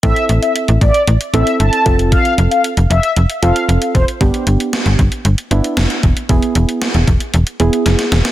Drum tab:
HH |xxxxxxxxxxxxxxxx|xxxxxxxxxxxxxxxx|xxxxxxxxxxxxxxxx|xxxxxxxxxxxxxxxx|
SD |----------------|----------------|----o-------o---|----o-------oooo|
BD |o-----o-------o-|o-------------o-|o-----o-------o-|o-----o---------|